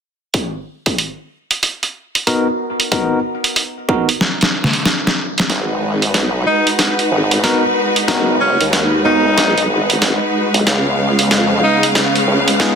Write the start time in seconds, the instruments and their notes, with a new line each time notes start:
0.34 kick, closed hi-hat
0.86 kick, closed hi-hat
0.98 closed hi-hat
1.51 closed hi-hat
1.63 closed hi-hat
1.83 closed hi-hat
2.15 closed hi-hat
2.27 tine electric piano B3 D#4 F#4 A#4, closed hi-hat
2.80 closed hi-hat
2.92 tine electric piano B3 D#4 F#4 A#4, kick, closed hi-hat
3.44 closed hi-hat
3.56 closed hi-hat
3.89 tine electric piano B3 D#4 F#4 A#4, kick
4.09 closed hi-hat
4.21 snare
4.41 snare, closed hi-hat
4.64 snare
4.73 closed hi-hat
4.86 snare, closed hi-hat
5.07 snare
5.38 snare, closed hi-hat
5.50 wobble bass G#1, string section G#3 D#4 F#4 B4, snare, closed hi-hat
6.02 closed hi-hat
6.14 wobble bass B1, snare, closed hi-hat
6.46 tenor saxophone D#4
6.67 closed hi-hat
6.79 snare, closed hi-hat
6.99 closed hi-hat
7.11 wobble bass G#1
7.31 closed hi-hat
7.43 tine electric piano B3 D#4 F#4 A#4, snare, closed hi-hat
7.96 closed hi-hat
8.08 wobble bass F#1, tine electric piano B3 D#4 F#4 A#4, snare, closed hi-hat
8.41 tenor saxophone C#4
8.61 wobble bass D#2, closed hi-hat
8.73 snare, closed hi-hat
9.05 tine electric piano B3 D#4 F#4 A#4, tenor saxophone D#4
9.38 snare, closed hi-hat
9.58 wobble bass B1, closed hi-hat
9.70 wobble bass G#1
9.90 closed hi-hat
10.02 wobble bass G#1, snare, closed hi-hat
10.54 wobble bass B1, closed hi-hat
10.66 wobble bass C#2, string section C#3 B3 F5, snare, closed hi-hat
11.19 closed hi-hat
11.31 wobble bass F2, snare, closed hi-hat
11.63 tenor saxophone D#4
11.83 closed hi-hat
11.95 snare, closed hi-hat
12.16 closed hi-hat
12.28 wobble bass C#2
12.48 closed hi-hat
12.60 tine electric piano B3 D#4 F4 G#4, snare, closed hi-hat